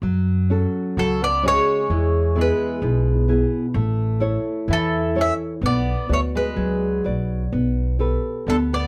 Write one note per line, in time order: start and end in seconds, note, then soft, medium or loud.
0.02 0.63 F#2 medium
0.02 0.94 F#3 medium
0.50 1.25 C#4 soft
0.50 1.25 F#4 soft
0.50 1.25 A4 soft
0.97 1.57 C#2 medium
0.97 1.88 C#3 medium
0.97 1.19 F#3 medium
0.97 1.22 A4 medium
1.22 1.43 B3 medium
1.22 1.44 D5 medium
1.43 2.33 G#3 medium
1.43 1.80 C#4 soft
1.43 1.81 F#4 soft
1.43 1.81 C#5 soft
1.48 2.41 C#5 loud
1.90 2.50 E2 medium
1.90 2.80 E3 medium
2.35 3.25 G#3 medium
2.35 3.09 B3 soft
2.35 3.10 E4 soft
2.35 3.10 G#4 soft
2.41 3.27 B4 medium
2.82 3.42 B1 medium
2.82 3.72 B2 medium
3.28 3.65 B3 soft
3.28 3.66 E4 soft
3.28 3.66 G#4 soft
3.74 4.35 A1 medium
3.74 4.65 A3 medium
4.20 4.96 E4 soft
4.20 4.97 A4 soft
4.20 4.97 C#5 medium
4.68 5.29 E2 medium
4.68 5.59 E3 medium
4.68 5.14 E3 medium
4.73 5.19 A4 medium
5.15 5.30 C#4 medium
5.15 5.53 E4 soft
5.15 5.53 A4 soft
5.15 5.53 C#5 soft
5.21 5.33 E5 medium
5.61 5.92 B1 medium
5.61 6.09 B3 medium
5.65 6.08 B3 medium
5.65 6.08 D5 medium
6.09 6.53 D2 medium
6.09 6.18 A3 medium
6.09 6.86 F#4 soft
6.09 6.86 B4 soft
6.09 6.86 D5 soft
6.13 6.19 C#5 medium
6.35 7.02 G#3 medium
6.35 7.03 B4 medium
6.56 7.01 C#2 medium
6.56 7.50 F#3 medium
7.04 7.49 B1 medium
7.04 7.43 F#4 soft
7.04 7.43 B4 soft
7.04 7.44 D5 soft
7.52 8.14 B1 medium
7.52 7.99 B3 medium
7.99 8.75 G4 soft
7.99 8.76 A4 soft
7.99 8.76 B4 soft
8.47 8.87 D2 medium
8.47 8.54 D3 medium
8.47 8.87 B3 medium
8.47 8.56 A4 medium
8.73 8.87 B3 medium
8.73 8.87 D5 medium